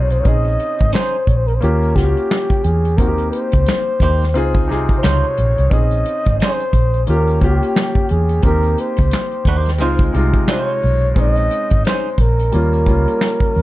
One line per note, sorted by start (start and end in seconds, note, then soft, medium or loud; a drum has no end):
0.00 0.23 B1 medium
0.00 0.11 C3 medium
0.00 0.24 C4 medium
0.00 0.26 D#4 medium
0.00 0.27 F4 medium
0.00 0.27 G#4 medium
0.00 0.14 C#5 medium
0.10 0.22 C5 medium
0.10 closed hi-hat soft
0.20 1.41 C4 medium
0.20 0.29 C#5 medium
0.25 0.56 A#1 medium
0.25 1.42 C#4 medium
0.25 1.42 D#4 medium
0.25 1.43 G#4 medium
0.25 0.95 D#5 loud
0.25 kick medium
0.25 closed hi-hat medium
0.44 closed hi-hat soft
0.60 closed hi-hat medium
0.79 0.93 G#1 medium
0.79 kick medium
0.79 closed hi-hat soft
0.93 1.15 C#4 medium
0.93 1.16 D#4 medium
0.93 1.16 G#4 medium
0.93 1.29 C5 medium
0.93 1.17 C5 medium
0.93 snare medium
0.93 clap medium
0.93 closed hi-hat medium
1.27 1.58 A#1 medium
1.27 1.39 C#5 medium
1.27 kick medium
1.27 closed hi-hat soft
1.37 1.49 C5 medium
1.47 1.57 A#4 medium
1.47 closed hi-hat soft
1.55 1.63 C5 medium
1.61 1.93 D#2 medium
1.61 1.91 A#3 medium
1.61 1.91 C#4 medium
1.61 1.92 F4 medium
1.61 1.92 G4 medium
1.61 1.97 A#4 medium
1.61 closed hi-hat medium
1.82 closed hi-hat soft
1.94 2.14 C#2 medium
1.94 2.84 A#3 medium
1.94 2.85 C#4 medium
1.94 2.85 F4 medium
1.94 2.04 F#4 medium
1.94 2.65 G4 medium
1.94 kick medium
1.94 snare soft
1.94 closed hi-hat medium
2.04 2.89 G4 medium
2.17 closed hi-hat soft
2.31 snare medium
2.31 clap medium
2.31 closed hi-hat medium
2.50 kick medium
2.50 closed hi-hat soft
2.64 2.99 E2 medium
2.64 2.99 G#4 medium
2.64 closed hi-hat medium
2.85 closed hi-hat soft
2.97 3.29 D#2 medium
2.97 4.14 A#3 medium
2.97 4.15 C4 medium
2.97 4.16 D#4 medium
2.97 3.07 F#4 medium
2.97 3.31 A#4 medium
2.97 kick medium
2.97 closed hi-hat medium
3.07 4.19 G4 medium
3.18 closed hi-hat soft
3.31 4.64 C5 medium
3.31 closed hi-hat medium
3.52 3.66 C#2 medium
3.52 kick medium
3.52 closed hi-hat soft
3.66 muted clean electric guitar stroke soft
3.66 snare medium
3.66 clap medium
3.66 closed hi-hat medium
4.00 4.36 D#2 medium
4.00 4.23 A#3 medium
4.00 4.23 D#4 medium
4.00 4.24 G4 medium
4.00 4.24 C5 medium
4.00 kick medium
4.00 closed hi-hat medium
4.21 snare soft
4.21 closed hi-hat soft
4.34 4.71 C#2 medium
4.34 4.64 C4 medium
4.34 4.65 D#4 medium
4.34 4.65 F4 medium
4.34 4.66 G#4 medium
4.34 closed hi-hat medium
4.55 kick medium
4.68 4.88 C2 medium
4.68 5.57 C3 medium
4.68 5.58 D#4 medium
4.68 5.58 F4 medium
4.68 5.59 G#4 medium
4.68 snare soft
4.68 closed hi-hat medium
4.89 kick medium
4.89 closed hi-hat soft
4.98 5.05 C5 medium
5.03 5.22 C#2 medium
5.03 5.25 G#3 medium
5.03 5.25 D#4 medium
5.03 5.25 F4 medium
5.03 5.26 C5 medium
5.03 5.73 C#5 medium
5.03 snare medium
5.03 clap medium
5.03 closed hi-hat medium
5.24 closed hi-hat soft
5.37 5.56 A#1 medium
5.37 closed hi-hat medium
5.58 5.71 C2 medium
5.58 closed hi-hat soft
5.70 6.02 A#1 medium
5.70 6.87 C4 medium
5.70 6.88 C#4 medium
5.70 6.88 D#4 medium
5.70 6.89 G#4 medium
5.70 6.39 D#5 loud
5.70 kick medium
5.70 closed hi-hat medium
5.91 closed hi-hat soft
6.06 closed hi-hat medium
6.25 6.39 G#1 medium
6.25 kick medium
6.25 closed hi-hat soft
6.39 6.62 C#4 medium
6.39 6.63 D#4 medium
6.39 6.63 G#4 medium
6.39 7.03 C5 medium
6.39 snare medium
6.39 clap medium
6.39 closed hi-hat medium
6.44 6.63 C5 medium
6.60 closed hi-hat soft
6.73 7.04 A#1 medium
6.73 kick medium
6.73 closed hi-hat medium
6.94 closed hi-hat soft
7.07 7.39 D#2 medium
7.07 7.37 A#3 medium
7.07 7.37 C#4 medium
7.07 7.38 F4 medium
7.07 7.38 G4 medium
7.07 7.40 A#4 medium
7.07 closed hi-hat medium
7.28 closed hi-hat soft
7.40 7.60 C#2 medium
7.40 8.30 A#3 medium
7.40 8.30 C#4 medium
7.40 8.31 F4 medium
7.40 8.12 G4 medium
7.40 8.32 G4 medium
7.40 kick medium
7.40 closed hi-hat medium
7.63 closed hi-hat soft
7.76 snare medium
7.76 clap medium
7.76 closed hi-hat medium
7.95 kick medium
8.09 8.41 E2 medium
8.09 8.44 G#4 medium
8.09 closed hi-hat medium
8.29 closed hi-hat soft
8.42 8.75 D#2 medium
8.42 9.60 A#3 medium
8.42 9.60 C4 medium
8.42 9.61 D#4 medium
8.42 9.62 G4 medium
8.42 8.82 A#4 medium
8.42 kick loud
8.42 closed hi-hat medium
8.63 closed hi-hat soft
8.78 10.15 C5 medium
8.78 closed hi-hat medium
8.97 9.11 C#2 medium
8.97 kick medium
8.97 closed hi-hat soft
9.11 muted clean electric guitar stroke soft
9.11 snare medium
9.11 clap medium
9.11 closed hi-hat medium
9.31 closed hi-hat soft
9.45 9.81 D#2 medium
9.45 9.69 A#3 medium
9.45 9.69 D#4 medium
9.45 9.70 G4 medium
9.45 9.70 C5 medium
9.45 kick medium
9.45 closed hi-hat medium
9.66 snare soft
9.66 closed hi-hat soft
9.78 10.11 C#2 medium
9.78 10.09 G#3 medium
9.78 10.02 G#3 medium
9.78 10.10 C4 medium
9.78 10.10 D#4 medium
9.78 10.03 D#4 medium
9.78 10.03 F4 medium
9.78 10.11 F4 medium
9.78 closed hi-hat medium
9.82 10.03 C5 medium
9.99 kick medium
9.99 closed hi-hat soft
10.13 10.32 C2 medium
10.13 11.03 C3 medium
10.13 11.02 G#3 medium
10.13 11.03 D#4 medium
10.13 11.04 F4 medium
10.13 closed hi-hat medium
10.33 kick medium
10.33 closed hi-hat soft
10.48 10.71 G#3 medium
10.48 10.71 D#4 medium
10.48 10.72 F4 medium
10.48 10.72 C5 medium
10.48 11.14 C#5 loud
10.48 snare medium
10.48 clap medium
10.48 closed hi-hat medium
10.82 11.14 B1 medium
10.82 open hi-hat soft
11.02 closed hi-hat soft
11.14 11.47 A#1 medium
11.14 12.32 G#3 medium
11.14 12.33 C4 medium
11.14 12.33 C#4 medium
11.14 12.34 D#4 medium
11.14 kick loud
11.14 closed hi-hat medium
11.19 11.82 D#5 loud
11.36 closed hi-hat soft
11.51 closed hi-hat medium
11.70 11.84 G#1 medium
11.70 kick medium
11.70 closed hi-hat soft
11.85 12.08 C#4 medium
11.85 12.08 D#4 medium
11.85 12.22 C5 medium
11.85 snare medium
11.85 clap medium
11.85 closed hi-hat medium
11.89 12.09 G#4 medium
11.89 12.09 C5 medium
12.05 closed hi-hat soft
12.18 12.49 A#1 medium
12.18 13.62 A#4 medium
12.18 kick medium
12.18 closed hi-hat medium
12.39 closed hi-hat soft
12.52 12.84 D#2 medium
12.52 12.82 G3 medium
12.52 12.82 A#3 medium
12.52 12.83 C#4 medium
12.52 12.84 F4 medium
12.52 closed hi-hat medium
12.73 closed hi-hat soft
12.86 13.05 C#2 medium
12.86 13.62 G3 medium
12.86 13.62 A#3 medium
12.86 13.62 C#4 medium
12.86 13.62 F4 medium
12.86 kick medium
12.86 closed hi-hat medium
13.07 closed hi-hat soft
13.21 snare medium
13.21 clap medium
13.21 closed hi-hat medium
13.40 kick medium
13.55 13.62 E2 medium
13.55 open hi-hat soft